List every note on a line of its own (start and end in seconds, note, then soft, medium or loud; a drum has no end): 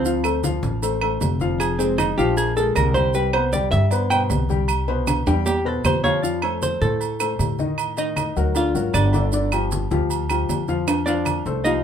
0.00 0.57 D2 medium
0.00 0.40 C4 medium
0.00 0.40 C5 loud
0.05 0.21 F3 medium
0.05 0.21 F4 medium
0.05 0.21 F5 medium
0.05 maracas medium
0.24 0.40 A3 medium
0.24 0.40 A4 medium
0.24 0.40 C5 medium
0.24 high conga soft
0.24 low agogo loud
0.24 claves medium
0.24 maracas medium
0.43 0.75 F3 medium
0.43 0.76 F4 medium
0.43 0.76 F5 medium
0.43 high conga loud
0.43 low timbale medium
0.43 maracas medium
0.63 1.17 A1 loud
0.63 high conga loud
0.63 maracas soft
0.82 0.98 A3 medium
0.82 0.98 A4 medium
0.82 0.99 C5 medium
0.82 high conga soft
0.82 low agogo medium
0.82 maracas medium
1.01 1.34 A3 medium
1.01 1.34 A4 medium
1.01 1.34 C5 medium
1.01 high conga soft
1.01 low agogo loud
1.01 claves medium
1.21 2.12 F1 medium
1.21 high conga medium
1.21 low timbale medium
1.21 low agogo medium
1.21 maracas medium
1.40 1.72 F3 medium
1.40 1.72 F4 medium
1.40 1.73 F5 medium
1.40 high conga medium
1.40 maracas soft
1.60 1.79 G#4 medium
1.60 high conga soft
1.60 low agogo loud
1.60 claves medium
1.60 maracas medium
1.79 2.11 G#3 medium
1.79 1.98 C4 medium
1.79 2.11 G#4 medium
1.79 2.11 C5 medium
1.79 high conga soft
1.79 low agogo medium
1.79 maracas medium
1.98 2.17 D#4 medium
1.98 high conga loud
1.98 low timbale medium
1.98 low agogo loud
1.98 claves medium
1.98 maracas medium
2.18 2.72 A#1 loud
2.18 2.50 F3 loud
2.18 2.50 F4 loud
2.18 2.36 G4 loud
2.18 2.50 F5 loud
2.18 high conga soft
2.18 maracas soft
2.37 2.56 G#4 medium
2.37 high conga soft
2.37 low agogo medium
2.37 maracas medium
2.56 2.88 G#3 medium
2.56 2.88 G#4 medium
2.56 2.75 A4 loud
2.56 2.89 A#4 medium
2.56 high conga soft
2.56 maracas medium
2.75 3.66 C2 medium
2.75 2.95 A#4 medium
2.75 high conga medium
2.75 low timbale medium
2.75 low agogo loud
2.75 claves medium
2.75 maracas medium
2.94 3.11 G3 medium
2.94 3.11 G4 medium
2.94 3.13 C5 loud
2.94 3.11 G5 medium
2.94 high conga medium
2.94 low agogo medium
2.94 maracas soft
3.14 3.30 G3 medium
3.14 3.30 G4 medium
3.14 3.33 B4 medium
3.14 3.31 G5 medium
3.14 high conga soft
3.14 maracas medium
3.33 3.50 B3 medium
3.33 3.50 B4 medium
3.33 3.52 C5 medium
3.33 3.50 C5 medium
3.33 high conga soft
3.33 low agogo loud
3.33 claves medium
3.52 3.85 G3 medium
3.52 3.85 G4 medium
3.52 3.71 D5 medium
3.52 3.85 G5 medium
3.52 high conga loud
3.52 low timbale medium
3.52 maracas medium
3.71 4.26 G2 loud
3.71 3.91 E5 loud
3.71 high conga loud
3.71 maracas soft
3.91 4.08 B3 medium
3.91 4.08 B4 medium
3.91 4.08 C5 medium
3.91 4.10 D5 medium
3.91 high conga soft
3.91 low agogo medium
3.91 maracas medium
4.10 4.43 B2 medium
4.10 4.43 B4 medium
4.10 4.43 C5 medium
4.10 4.22 G5 loud
4.10 high conga soft
4.10 low agogo loud
4.10 claves medium
4.10 maracas medium
4.30 5.21 C2 medium
4.30 high conga medium
4.30 low timbale medium
4.30 low agogo medium
4.30 maracas medium
4.49 4.81 G3 medium
4.49 4.81 G4 medium
4.49 4.82 G5 medium
4.49 high conga medium
4.49 maracas soft
4.68 high conga soft
4.68 low agogo loud
4.68 claves medium
4.68 maracas medium
4.88 5.20 B2 medium
4.88 5.20 B4 medium
4.88 5.20 C5 medium
4.88 high conga soft
4.88 low agogo medium
5.07 high conga loud
5.07 high timbale medium
5.07 low agogo loud
5.07 claves medium
5.07 maracas medium
5.26 5.80 E2 loud
5.26 5.58 G3 loud
5.26 5.59 G4 loud
5.26 5.59 G5 loud
5.26 high conga soft
5.26 high timbale loud
5.26 maracas soft
5.46 5.66 G4 medium
5.46 high conga soft
5.46 low timbale loud
5.46 low agogo medium
5.46 maracas medium
5.65 5.97 B2 medium
5.65 5.84 A4 medium
5.65 5.97 B4 medium
5.65 5.97 C5 medium
5.65 high conga soft
5.84 6.75 F2 medium
5.84 6.04 C5 medium
5.84 high conga medium
5.84 low timbale medium
5.84 low agogo loud
5.84 claves medium
5.84 maracas medium
6.04 6.20 F3 medium
6.04 6.20 F4 medium
6.04 6.23 C#5 loud
6.04 6.20 F5 medium
6.04 high conga medium
6.04 low timbale medium
6.04 low agogo medium
6.04 maracas soft
6.23 6.39 F3 medium
6.23 6.39 F4 medium
6.23 6.43 D5 medium
6.23 6.39 F5 medium
6.23 high conga soft
6.23 maracas medium
6.42 6.74 A3 medium
6.42 6.75 A4 medium
6.42 6.75 C5 medium
6.42 6.62 C#5 loud
6.42 high conga soft
6.42 low agogo loud
6.42 claves medium
6.62 6.81 C5 medium
6.62 high conga medium
6.62 low timbale medium
6.62 maracas medium
6.82 7.35 A2 medium
6.82 7.13 A3 medium
6.82 7.35 A4 loud
6.82 7.13 A4 medium
6.82 7.14 C5 medium
6.82 high conga loud
6.82 maracas soft
7.01 high conga soft
7.01 low agogo medium
7.01 maracas medium
7.20 7.52 A3 medium
7.20 7.52 A4 medium
7.20 7.52 C5 medium
7.20 high conga soft
7.20 low agogo loud
7.20 claves medium
7.20 maracas medium
7.39 8.30 A2 medium
7.39 high conga medium
7.39 low timbale medium
7.39 low agogo medium
7.39 maracas medium
7.59 7.91 D#3 medium
7.59 7.91 D#4 medium
7.59 7.91 D#5 medium
7.59 high conga medium
7.59 maracas soft
7.78 high conga soft
7.78 low agogo loud
7.78 claves medium
7.78 maracas medium
7.97 8.29 D#3 medium
7.97 8.29 D#4 medium
7.97 8.52 D#4 medium
7.97 8.30 D#5 medium
7.97 8.52 D#5 medium
7.97 high conga soft
7.97 low agogo medium
7.97 maracas medium
8.16 high conga medium
8.16 low timbale medium
8.16 low agogo loud
8.16 claves medium
8.16 maracas medium
8.36 8.72 D2 medium
8.36 8.52 F#3 medium
8.36 8.52 F#4 medium
8.36 8.52 A#4 medium
8.36 high conga soft
8.36 maracas soft
8.55 8.71 D3 medium
8.55 8.71 D4 medium
8.55 8.92 F4 medium
8.55 8.72 D5 medium
8.55 8.92 F5 medium
8.55 high conga soft
8.55 low agogo medium
8.55 maracas medium
8.75 8.93 G#1 medium
8.75 9.07 F#3 medium
8.75 9.07 F#4 medium
8.75 9.07 A#4 medium
8.75 high conga soft
8.75 maracas medium
8.94 9.85 G1 medium
8.94 9.30 D4 medium
8.94 9.30 D5 medium
8.94 high conga medium
8.94 low timbale medium
8.94 low agogo loud
8.94 claves medium
8.94 maracas medium
9.13 9.30 D3 medium
9.13 9.30 D4 medium
9.13 9.30 D5 medium
9.13 high conga medium
9.13 low agogo medium
9.13 maracas soft
9.32 9.49 D3 medium
9.32 9.49 D4 medium
9.32 9.49 D5 medium
9.32 high conga soft
9.32 maracas medium
9.52 9.84 F3 medium
9.52 9.84 F4 medium
9.52 9.84 G4 medium
9.52 high conga soft
9.52 low agogo loud
9.52 claves medium
9.52 maracas medium
9.71 high conga medium
9.71 low timbale medium
9.71 maracas medium
9.91 10.45 D2 medium
9.91 10.23 F3 medium
9.91 10.23 F4 medium
9.91 10.23 G4 medium
9.91 high conga loud
9.91 maracas soft
10.10 high conga soft
10.10 low agogo medium
10.10 maracas medium
10.29 10.62 F3 medium
10.29 10.62 F4 medium
10.29 10.62 G4 medium
10.29 high conga soft
10.29 low agogo loud
10.29 claves medium
10.29 maracas medium
10.49 11.40 F2 medium
10.49 high conga medium
10.49 low timbale medium
10.49 low agogo medium
10.49 maracas medium
10.68 11.00 F3 medium
10.68 11.00 F4 medium
10.68 11.00 F5 medium
10.68 high conga medium
10.68 maracas soft
10.88 high conga soft
10.88 high timbale medium
10.88 low agogo loud
10.88 claves medium
10.88 maracas medium
11.06 11.39 F3 medium
11.06 11.61 D4 medium
11.06 11.39 F4 medium
11.06 11.60 D5 loud
11.06 11.39 F5 medium
11.06 high conga soft
11.06 high timbale medium
11.06 low agogo medium
11.06 maracas medium
11.25 high conga medium
11.25 low agogo loud
11.25 claves medium
11.25 maracas medium
11.46 11.82 C2 loud
11.46 11.62 A3 medium
11.46 11.62 A4 medium
11.46 11.62 C5 medium
11.46 high conga soft
11.46 maracas soft
11.64 11.81 F3 medium
11.64 11.84 D#4 medium
11.64 11.81 F4 medium
11.64 11.84 D#5 medium
11.64 11.82 F5 medium
11.64 high conga soft
11.64 low timbale medium
11.64 low agogo medium
11.64 maracas medium